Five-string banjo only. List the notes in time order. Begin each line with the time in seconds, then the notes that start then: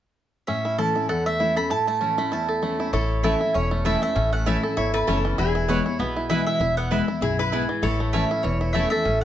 0.48 C#4
0.65 E4
0.78 A4
0.96 E4
1.09 A4
1.26 A3
1.40 E4
1.56 A4
1.70 E4
1.87 A3
2.01 C#4
2.18 A3
2.32 E4
2.48 A4
2.63 A3
2.80 E4
2.93 E4
3.24 A4
3.41 E4
3.54 C#4
3.71 A3
3.85 E4
4.02 A3
4.15 C#4
4.32 A3
4.46 E4
4.63 A4
4.77 E4
4.94 A4
5.08 C#4
5.25 E3
5.38 E4
5.55 E4
5.69 E4
5.86 E4
6.00 B3
6.16 E4
6.30 E4
6.47 E4
6.61 E4
6.78 B3
6.91 E4
7.08 E4
7.22 E4
7.39 E4
7.52 E4
7.69 E3
7.83 E4
8.00 A3
8.14 C#4
8.31 E4
8.44 E3
8.61 E4
8.74 A3
8.92 A4
9.05 C#4